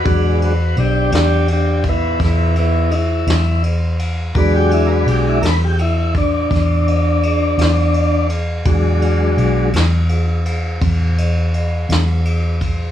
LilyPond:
<<
  \new Staff \with { instrumentName = "Tonewheel organ" } { \time 12/8 \key e \mixolydian \tempo 4. = 56 <fis' b'>8 <fis' b'>8 <d' g'>8 <d' g'>8 <d' g'>8 <b e'>8 <b e'>8 <b e'>8 <dis' e'>4 r4 | <ais' b'>16 g'16 e'16 <ais' b'>16 g'16 e'16 <ais' b'>16 g'16 e'8 d'2. r8 | r1. | }
  \new Staff \with { instrumentName = "Tonewheel organ" } { \clef bass \time 12/8 \key e \mixolydian <fis gis d'>8 r1 r4. | <fis gis d'>4. r1 r8 | <fis gis d'>4. r1 r8 | }
  \new Staff \with { instrumentName = "Fingered electric bass" } { \clef bass \time 12/8 \key e \mixolydian e,4 b,,8 e,4. e,4. e,4. | e,4 b,,8 e,4. e,4. e,4. | e,4 b,,8 e,4. e,4. e,4. | }
  \new DrumStaff \with { instrumentName = "Drums" } \drummode { \time 12/8 <bd cymr>8 cymr8 cymr8 <cymr sn>8 cymr8 <bd cymr>8 <bd cymr sn>8 cymr8 cymr8 <cymr sn>8 cymr8 cymr8 | <bd cymr>8 cymr8 cymr8 <cymr sn>8 cymr8 <bd cymr>8 <bd cymr sn>8 cymr8 cymr8 <cymr sn>8 cymr8 cymr8 | <bd cymr>8 cymr8 cymr8 <cymr sn>8 cymr8 cymr8 <bd cymr>8 cymr8 cymr8 <cymr sn>8 cymr8 <bd cymr>8 | }
>>